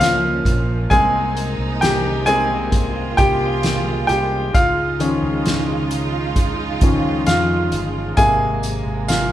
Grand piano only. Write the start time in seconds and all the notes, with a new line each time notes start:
0.00 F4 F5
0.90 G#3 A#3 C4 G#4 G#5
1.81 G4 G5
2.26 G#3 A#3 C4 G#4 G#5
3.17 G4 G5
4.07 G4 G5
4.54 F4 F5
5.00 D#3 F3 C#4
6.83 D#3 F3 C#4
7.27 F4 F5
8.17 C3 G#3 A#3 G#4 G#5
9.08 F4 F5